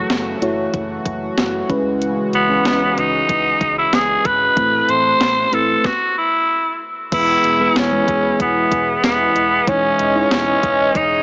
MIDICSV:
0, 0, Header, 1, 6, 480
1, 0, Start_track
1, 0, Key_signature, 4, "major"
1, 0, Tempo, 638298
1, 1515, Time_signature, 4, 2, 24, 8
1, 8443, End_track
2, 0, Start_track
2, 0, Title_t, "Tenor saxophone"
2, 0, Program_c, 0, 66
2, 1764, Note_on_c, 0, 59, 89
2, 2246, Note_on_c, 0, 63, 88
2, 2258, Note_off_c, 0, 59, 0
2, 2841, Note_off_c, 0, 63, 0
2, 2845, Note_on_c, 0, 64, 87
2, 2963, Note_on_c, 0, 68, 94
2, 2975, Note_off_c, 0, 64, 0
2, 3202, Note_on_c, 0, 71, 109
2, 3214, Note_off_c, 0, 68, 0
2, 3683, Note_on_c, 0, 72, 111
2, 3695, Note_off_c, 0, 71, 0
2, 4164, Note_on_c, 0, 69, 93
2, 4176, Note_off_c, 0, 72, 0
2, 4407, Note_on_c, 0, 66, 94
2, 4419, Note_off_c, 0, 69, 0
2, 4641, Note_off_c, 0, 66, 0
2, 4646, Note_on_c, 0, 64, 85
2, 5091, Note_off_c, 0, 64, 0
2, 5367, Note_on_c, 0, 64, 96
2, 5846, Note_on_c, 0, 61, 90
2, 5858, Note_off_c, 0, 64, 0
2, 6321, Note_off_c, 0, 61, 0
2, 6327, Note_on_c, 0, 59, 87
2, 6771, Note_off_c, 0, 59, 0
2, 6804, Note_on_c, 0, 59, 90
2, 7284, Note_on_c, 0, 61, 97
2, 7296, Note_off_c, 0, 59, 0
2, 7760, Note_off_c, 0, 61, 0
2, 7764, Note_on_c, 0, 61, 97
2, 8246, Note_on_c, 0, 63, 96
2, 8257, Note_off_c, 0, 61, 0
2, 8443, Note_off_c, 0, 63, 0
2, 8443, End_track
3, 0, Start_track
3, 0, Title_t, "FM electric piano"
3, 0, Program_c, 1, 5
3, 0, Control_c, 1, 64, 127
3, 0, Note_on_c, 1, 57, 72
3, 0, Note_on_c, 1, 64, 66
3, 0, Note_on_c, 1, 66, 69
3, 0, Note_on_c, 1, 73, 77
3, 186, Note_off_c, 1, 57, 0
3, 188, Note_off_c, 1, 64, 0
3, 189, Note_off_c, 1, 66, 0
3, 190, Note_off_c, 1, 73, 0
3, 311, Note_on_c, 1, 57, 88
3, 313, Note_on_c, 1, 64, 81
3, 316, Note_on_c, 1, 66, 78
3, 320, Note_on_c, 1, 73, 94
3, 1146, Note_off_c, 1, 57, 0
3, 1147, Note_off_c, 1, 64, 0
3, 1149, Note_off_c, 1, 66, 0
3, 1151, Note_off_c, 1, 73, 0
3, 1272, Note_on_c, 1, 56, 91
3, 1275, Note_on_c, 1, 61, 83
3, 1276, Note_on_c, 1, 49, 73
3, 1278, Note_on_c, 1, 64, 78
3, 1281, Note_on_c, 1, 71, 98
3, 1285, Control_c, 1, 64, 0
3, 1429, Control_c, 1, 64, 127
3, 1794, Note_off_c, 1, 56, 0
3, 1796, Note_off_c, 1, 61, 0
3, 1797, Note_off_c, 1, 64, 0
3, 1799, Note_off_c, 1, 71, 0
3, 1872, Note_on_c, 1, 56, 72
3, 1874, Note_on_c, 1, 61, 68
3, 1877, Note_on_c, 1, 64, 66
3, 1881, Note_on_c, 1, 71, 81
3, 1965, Note_off_c, 1, 49, 0
3, 1978, Note_off_c, 1, 56, 0
3, 1979, Note_off_c, 1, 61, 0
3, 1980, Note_off_c, 1, 64, 0
3, 1982, Note_off_c, 1, 71, 0
3, 1992, Note_on_c, 1, 56, 69
3, 1995, Note_on_c, 1, 61, 68
3, 1998, Note_on_c, 1, 52, 67
3, 2827, Note_off_c, 1, 56, 0
3, 2828, Note_off_c, 1, 61, 0
3, 2830, Note_off_c, 1, 52, 0
3, 3433, Note_on_c, 1, 57, 80
3, 3436, Note_on_c, 1, 60, 70
3, 3437, Note_on_c, 1, 45, 67
3, 3438, Note_on_c, 1, 64, 68
3, 3442, Note_on_c, 1, 83, 82
3, 3444, Control_c, 1, 64, 0
3, 3595, Control_c, 1, 64, 127
3, 4059, Note_off_c, 1, 57, 0
3, 4060, Note_off_c, 1, 60, 0
3, 4062, Note_off_c, 1, 64, 0
3, 4063, Note_off_c, 1, 83, 0
3, 4126, Note_off_c, 1, 45, 0
3, 4151, Note_on_c, 1, 57, 73
3, 4154, Note_on_c, 1, 60, 67
3, 4157, Note_on_c, 1, 64, 66
3, 4160, Note_on_c, 1, 71, 84
3, 4393, Note_off_c, 1, 57, 0
3, 4394, Note_off_c, 1, 60, 0
3, 4396, Note_off_c, 1, 64, 0
3, 4398, Note_off_c, 1, 71, 0
3, 4405, Control_c, 1, 64, 0
3, 5352, Note_on_c, 1, 56, 73
3, 5355, Note_on_c, 1, 59, 66
3, 5357, Note_on_c, 1, 52, 64
3, 5358, Note_on_c, 1, 64, 67
3, 5361, Note_on_c, 1, 71, 85
3, 5517, Control_c, 1, 64, 127
3, 5666, Note_off_c, 1, 56, 0
3, 5668, Note_off_c, 1, 59, 0
3, 5669, Note_off_c, 1, 64, 0
3, 5670, Note_off_c, 1, 71, 0
3, 5711, Note_on_c, 1, 56, 76
3, 5714, Note_on_c, 1, 59, 66
3, 5717, Note_on_c, 1, 64, 69
3, 5721, Note_on_c, 1, 71, 82
3, 5921, Note_off_c, 1, 56, 0
3, 5923, Note_off_c, 1, 59, 0
3, 5924, Note_off_c, 1, 64, 0
3, 5926, Note_off_c, 1, 71, 0
3, 5951, Note_on_c, 1, 56, 73
3, 5954, Note_on_c, 1, 59, 68
3, 5957, Note_on_c, 1, 64, 69
3, 5960, Note_on_c, 1, 71, 80
3, 6046, Note_off_c, 1, 52, 0
3, 6786, Note_off_c, 1, 56, 0
3, 6788, Note_off_c, 1, 59, 0
3, 6789, Note_off_c, 1, 64, 0
3, 6791, Note_off_c, 1, 71, 0
3, 7273, Note_on_c, 1, 56, 78
3, 7275, Note_on_c, 1, 63, 74
3, 7277, Note_on_c, 1, 52, 68
3, 7278, Note_on_c, 1, 64, 72
3, 7281, Note_on_c, 1, 73, 85
3, 7286, Control_c, 1, 64, 0
3, 7397, Control_c, 1, 64, 127
3, 7586, Note_off_c, 1, 56, 0
3, 7587, Note_off_c, 1, 63, 0
3, 7589, Note_off_c, 1, 64, 0
3, 7591, Note_off_c, 1, 73, 0
3, 7631, Note_on_c, 1, 56, 76
3, 7634, Note_on_c, 1, 63, 69
3, 7637, Note_on_c, 1, 64, 72
3, 7640, Note_on_c, 1, 73, 87
3, 7966, Note_off_c, 1, 52, 0
3, 8362, Note_off_c, 1, 56, 0
3, 8363, Note_off_c, 1, 63, 0
3, 8365, Note_off_c, 1, 64, 0
3, 8367, Note_off_c, 1, 73, 0
3, 8443, End_track
4, 0, Start_track
4, 0, Title_t, "Analog synth pad"
4, 0, Program_c, 2, 89
4, 0, Note_on_c, 2, 49, 83
4, 0, Note_on_c, 2, 52, 72
4, 0, Note_on_c, 2, 54, 74
4, 0, Note_on_c, 2, 57, 78
4, 0, Note_on_c, 2, 66, 91
4, 1247, Note_off_c, 2, 54, 0
4, 1256, Note_off_c, 2, 52, 0
4, 1256, Note_off_c, 2, 57, 0
4, 1276, Note_on_c, 2, 52, 76
4, 1277, Note_on_c, 2, 56, 75
4, 3406, Note_off_c, 2, 49, 0
4, 3414, Note_off_c, 2, 56, 0
4, 3433, Note_on_c, 2, 48, 84
4, 3433, Note_on_c, 2, 57, 75
4, 4366, Note_off_c, 2, 52, 0
4, 4366, Note_off_c, 2, 66, 0
4, 4384, Note_off_c, 2, 48, 0
4, 4385, Note_off_c, 2, 57, 0
4, 5353, Note_on_c, 2, 47, 86
4, 5354, Note_on_c, 2, 52, 75
4, 5354, Note_on_c, 2, 64, 75
4, 5354, Note_on_c, 2, 68, 93
4, 5355, Note_on_c, 2, 56, 75
4, 7255, Note_off_c, 2, 47, 0
4, 7255, Note_off_c, 2, 68, 0
4, 7256, Note_off_c, 2, 64, 0
4, 7274, Note_on_c, 2, 75, 79
4, 7275, Note_on_c, 2, 49, 83
4, 7275, Note_on_c, 2, 61, 94
4, 8443, Note_off_c, 2, 49, 0
4, 8443, Note_off_c, 2, 52, 0
4, 8443, Note_off_c, 2, 56, 0
4, 8443, Note_off_c, 2, 61, 0
4, 8443, Note_off_c, 2, 75, 0
4, 8443, End_track
5, 0, Start_track
5, 0, Title_t, "Fingered electric bass"
5, 0, Program_c, 3, 33
5, 75, Note_on_c, 3, 30, 94
5, 248, Note_off_c, 3, 30, 0
5, 314, Note_on_c, 3, 30, 95
5, 487, Note_off_c, 3, 30, 0
5, 554, Note_on_c, 3, 30, 93
5, 727, Note_off_c, 3, 30, 0
5, 794, Note_on_c, 3, 30, 92
5, 967, Note_off_c, 3, 30, 0
5, 1034, Note_on_c, 3, 30, 88
5, 1207, Note_off_c, 3, 30, 0
5, 1276, Note_on_c, 3, 37, 91
5, 1621, Note_off_c, 3, 37, 0
5, 1752, Note_on_c, 3, 37, 89
5, 1926, Note_off_c, 3, 37, 0
5, 1994, Note_on_c, 3, 37, 88
5, 2167, Note_off_c, 3, 37, 0
5, 2234, Note_on_c, 3, 37, 93
5, 2407, Note_off_c, 3, 37, 0
5, 2476, Note_on_c, 3, 37, 92
5, 2648, Note_off_c, 3, 37, 0
5, 2714, Note_on_c, 3, 37, 97
5, 2887, Note_off_c, 3, 37, 0
5, 2955, Note_on_c, 3, 37, 93
5, 3128, Note_off_c, 3, 37, 0
5, 3196, Note_on_c, 3, 32, 85
5, 3369, Note_off_c, 3, 32, 0
5, 3435, Note_on_c, 3, 33, 104
5, 3608, Note_off_c, 3, 33, 0
5, 3674, Note_on_c, 3, 33, 99
5, 3847, Note_off_c, 3, 33, 0
5, 3914, Note_on_c, 3, 33, 94
5, 4087, Note_off_c, 3, 33, 0
5, 4155, Note_on_c, 3, 33, 102
5, 4328, Note_off_c, 3, 33, 0
5, 5355, Note_on_c, 3, 28, 111
5, 5528, Note_off_c, 3, 28, 0
5, 5596, Note_on_c, 3, 28, 94
5, 5769, Note_off_c, 3, 28, 0
5, 5835, Note_on_c, 3, 28, 98
5, 6008, Note_off_c, 3, 28, 0
5, 6076, Note_on_c, 3, 28, 88
5, 6248, Note_off_c, 3, 28, 0
5, 6316, Note_on_c, 3, 28, 102
5, 6488, Note_off_c, 3, 28, 0
5, 6554, Note_on_c, 3, 28, 101
5, 6727, Note_off_c, 3, 28, 0
5, 6795, Note_on_c, 3, 28, 109
5, 6968, Note_off_c, 3, 28, 0
5, 7037, Note_on_c, 3, 28, 98
5, 7209, Note_off_c, 3, 28, 0
5, 7275, Note_on_c, 3, 28, 106
5, 7448, Note_off_c, 3, 28, 0
5, 7516, Note_on_c, 3, 28, 107
5, 7688, Note_off_c, 3, 28, 0
5, 7755, Note_on_c, 3, 28, 98
5, 7928, Note_off_c, 3, 28, 0
5, 7995, Note_on_c, 3, 28, 97
5, 8168, Note_off_c, 3, 28, 0
5, 8235, Note_on_c, 3, 28, 108
5, 8408, Note_off_c, 3, 28, 0
5, 8443, End_track
6, 0, Start_track
6, 0, Title_t, "Drums"
6, 75, Note_on_c, 9, 38, 97
6, 76, Note_on_c, 9, 42, 82
6, 150, Note_off_c, 9, 38, 0
6, 151, Note_off_c, 9, 42, 0
6, 316, Note_on_c, 9, 42, 69
6, 391, Note_off_c, 9, 42, 0
6, 554, Note_on_c, 9, 36, 85
6, 554, Note_on_c, 9, 42, 81
6, 629, Note_off_c, 9, 42, 0
6, 630, Note_off_c, 9, 36, 0
6, 794, Note_on_c, 9, 36, 89
6, 795, Note_on_c, 9, 42, 79
6, 869, Note_off_c, 9, 36, 0
6, 870, Note_off_c, 9, 42, 0
6, 1035, Note_on_c, 9, 38, 111
6, 1036, Note_on_c, 9, 42, 81
6, 1110, Note_off_c, 9, 38, 0
6, 1111, Note_off_c, 9, 42, 0
6, 1275, Note_on_c, 9, 36, 101
6, 1276, Note_on_c, 9, 42, 69
6, 1351, Note_off_c, 9, 36, 0
6, 1351, Note_off_c, 9, 42, 0
6, 1516, Note_on_c, 9, 42, 90
6, 1591, Note_off_c, 9, 42, 0
6, 1754, Note_on_c, 9, 42, 76
6, 1829, Note_off_c, 9, 42, 0
6, 1996, Note_on_c, 9, 38, 99
6, 1997, Note_on_c, 9, 42, 85
6, 2071, Note_off_c, 9, 38, 0
6, 2072, Note_off_c, 9, 42, 0
6, 2239, Note_on_c, 9, 42, 70
6, 2314, Note_off_c, 9, 42, 0
6, 2475, Note_on_c, 9, 36, 86
6, 2476, Note_on_c, 9, 42, 82
6, 2550, Note_off_c, 9, 36, 0
6, 2551, Note_off_c, 9, 42, 0
6, 2714, Note_on_c, 9, 36, 90
6, 2715, Note_on_c, 9, 42, 77
6, 2789, Note_off_c, 9, 36, 0
6, 2791, Note_off_c, 9, 42, 0
6, 2955, Note_on_c, 9, 38, 104
6, 2956, Note_on_c, 9, 42, 86
6, 3030, Note_off_c, 9, 38, 0
6, 3031, Note_off_c, 9, 42, 0
6, 3196, Note_on_c, 9, 36, 103
6, 3196, Note_on_c, 9, 42, 72
6, 3271, Note_off_c, 9, 36, 0
6, 3271, Note_off_c, 9, 42, 0
6, 3435, Note_on_c, 9, 36, 117
6, 3436, Note_on_c, 9, 42, 92
6, 3510, Note_off_c, 9, 36, 0
6, 3511, Note_off_c, 9, 42, 0
6, 3675, Note_on_c, 9, 42, 77
6, 3750, Note_off_c, 9, 42, 0
6, 3916, Note_on_c, 9, 38, 103
6, 3917, Note_on_c, 9, 42, 86
6, 3991, Note_off_c, 9, 38, 0
6, 3992, Note_off_c, 9, 42, 0
6, 4157, Note_on_c, 9, 42, 72
6, 4232, Note_off_c, 9, 42, 0
6, 4394, Note_on_c, 9, 38, 85
6, 4395, Note_on_c, 9, 36, 107
6, 4470, Note_off_c, 9, 36, 0
6, 4470, Note_off_c, 9, 38, 0
6, 5355, Note_on_c, 9, 42, 96
6, 5355, Note_on_c, 9, 49, 99
6, 5356, Note_on_c, 9, 36, 125
6, 5430, Note_off_c, 9, 49, 0
6, 5431, Note_off_c, 9, 36, 0
6, 5431, Note_off_c, 9, 42, 0
6, 5595, Note_on_c, 9, 42, 78
6, 5671, Note_off_c, 9, 42, 0
6, 5835, Note_on_c, 9, 54, 66
6, 5836, Note_on_c, 9, 38, 106
6, 5837, Note_on_c, 9, 42, 84
6, 5910, Note_off_c, 9, 54, 0
6, 5911, Note_off_c, 9, 38, 0
6, 5913, Note_off_c, 9, 42, 0
6, 6076, Note_on_c, 9, 36, 92
6, 6078, Note_on_c, 9, 42, 67
6, 6151, Note_off_c, 9, 36, 0
6, 6153, Note_off_c, 9, 42, 0
6, 6316, Note_on_c, 9, 36, 90
6, 6316, Note_on_c, 9, 42, 93
6, 6391, Note_off_c, 9, 36, 0
6, 6391, Note_off_c, 9, 42, 0
6, 6554, Note_on_c, 9, 36, 94
6, 6556, Note_on_c, 9, 42, 81
6, 6629, Note_off_c, 9, 36, 0
6, 6631, Note_off_c, 9, 42, 0
6, 6796, Note_on_c, 9, 38, 117
6, 6797, Note_on_c, 9, 42, 88
6, 6797, Note_on_c, 9, 54, 76
6, 6871, Note_off_c, 9, 38, 0
6, 6872, Note_off_c, 9, 42, 0
6, 6872, Note_off_c, 9, 54, 0
6, 7037, Note_on_c, 9, 42, 73
6, 7112, Note_off_c, 9, 42, 0
6, 7275, Note_on_c, 9, 36, 119
6, 7276, Note_on_c, 9, 42, 91
6, 7351, Note_off_c, 9, 36, 0
6, 7351, Note_off_c, 9, 42, 0
6, 7514, Note_on_c, 9, 42, 78
6, 7590, Note_off_c, 9, 42, 0
6, 7755, Note_on_c, 9, 54, 66
6, 7756, Note_on_c, 9, 38, 101
6, 7757, Note_on_c, 9, 42, 83
6, 7830, Note_off_c, 9, 54, 0
6, 7831, Note_off_c, 9, 38, 0
6, 7832, Note_off_c, 9, 42, 0
6, 7995, Note_on_c, 9, 36, 96
6, 7997, Note_on_c, 9, 42, 74
6, 8071, Note_off_c, 9, 36, 0
6, 8072, Note_off_c, 9, 42, 0
6, 8235, Note_on_c, 9, 36, 87
6, 8236, Note_on_c, 9, 42, 89
6, 8310, Note_off_c, 9, 36, 0
6, 8311, Note_off_c, 9, 42, 0
6, 8443, End_track
0, 0, End_of_file